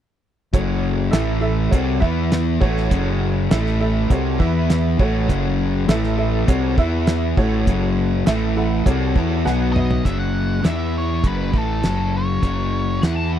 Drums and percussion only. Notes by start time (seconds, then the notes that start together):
0.54 kick, closed hi-hat
1.13 snare, closed hi-hat
1.72 kick, closed hi-hat
2.02 kick
2.32 snare, closed hi-hat
2.62 kick
2.77 snare
2.91 kick, closed hi-hat
3.51 snare, closed hi-hat
3.66 snare
4.10 kick, closed hi-hat
4.40 kick
4.70 snare, closed hi-hat
4.99 kick
5.29 kick, closed hi-hat
5.89 snare, closed hi-hat
6.04 snare
6.48 kick, closed hi-hat
6.78 kick
7.07 snare, closed hi-hat
7.37 kick
7.67 kick, closed hi-hat
8.27 snare, closed hi-hat
8.86 kick, closed hi-hat
9.16 kick
9.46 snare
9.76 mid tom
9.91 floor tom
10.05 kick, closed hi-hat
10.64 snare, closed hi-hat
11.24 kick, closed hi-hat
11.54 kick
11.83 snare, closed hi-hat
12.43 kick, closed hi-hat
13.03 snare, closed hi-hat